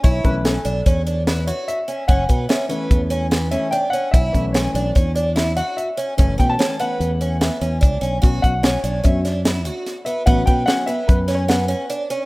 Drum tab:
HH |xxxxxxxxxx|xxxxxxxxxx|xxxxxxxxxx|xxxxxxxxxx|
SD |--o---o---|--o---o---|--o---o---|--o---o---|
BD |oo--o-----|oo--o-----|oo--o-----|oo------o-|

HH |xxxxxxxxxx|xxxxxxxxxx|
SD |--o--oo-o-|--o--oo---|
BD |oo--o-----|oo--o-----|